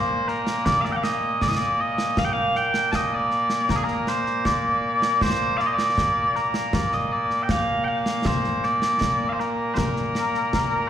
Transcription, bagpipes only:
Already playing: A#2 A#3 C5
0.28 A#4
0.66 D5
0.81 F5
0.85 D5
0.92 G5
0.96 F5
1.03 D#5
1.42 D5
1.48 D#5
1.56 D5
1.80 D#5
2.19 F5
2.25 G5
2.33 F5
2.56 G5
2.91 D#5 A5
3.14 D5
3.70 A#4
3.76 G#4
3.84 A#4
4.08 C5
4.46 D5
5.22 C5
5.57 D5 F5
5.66 D#5
5.73 D5
6.36 A#4
6.74 D5
6.93 D#5
7.12 D5
7.43 G5
7.51 F5
7.84 F5 G5
8.26 C5
8.64 D5
9.29 C5 F5
9.39 A#4
9.74 A#4 C5

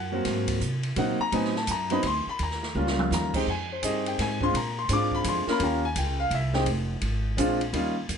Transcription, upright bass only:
Already playing: F#2
0.25 G#2
0.61 C3
0.96 A#2
1.19 muted upright bass stroke
1.32 A2
1.68 F#2
2.03 D2
2.27 muted upright bass stroke
2.39 D#2
2.75 C#2
3.11 D#2
3.47 F2
3.83 G2
4.19 G#2
4.54 A#2
4.89 G#2
5.24 F2
5.47 muted upright bass stroke
5.60 D#2
5.96 C#2
6.31 C2
6.66 F1
7.02 G#1
7.37 A#1
7.73 D#2
8.09 F2

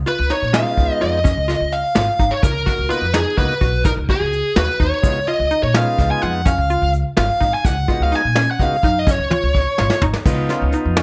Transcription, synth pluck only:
0.06 F4
0.30 D#4
0.53 C#4
1.01 F4
1.24 C#4
1.48 F4
1.95 F4
2.20 D#4
2.66 F#4
2.89 F4
3.14 D#4
3.61 F#4
3.85 D#4
4.09 F#4
4.56 F#4
4.80 D#4
5.28 F4
5.51 D#4
5.75 C#4
6.22 F4
6.45 C#4
6.70 F4
7.17 F4
7.40 D#4
7.88 F4
8.12 D#4
8.36 C#4
8.84 D#4
9.07 C#4
9.30 F4
9.79 F4
10.03 D#4
10.50 F4
10.74 D#4
10.97 C#4

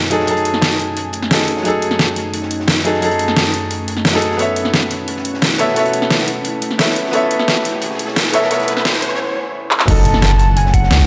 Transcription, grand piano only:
Already playing: F#3 D#4 G#4 A4
0.10 F#3 D#4 G#4 A4
0.26 F#3 D#4 G#4
0.31 A4
1.30 F#3 D#4 G#4 A4
1.63 F#3 D#4 G#4
1.68 A4
2.84 F#3 D#4 G#4 A4
3.00 F#3 D#4 G#4
3.05 A4
4.12 F#3 D#4 G#4 A4
4.37 B3 A4 C#5
4.42 E5
5.58 B3 A4 C#5 E5
5.74 B3 A4 C#5
5.79 E5
6.78 B3 A4 C#5 E5
7.11 B3 A4 C#5
7.16 E5
8.32 B3 A4 C#5 E5
8.48 B3 A4 C#5
8.53 E5
9.86 F#3 D#4 F#4
9.91 A4

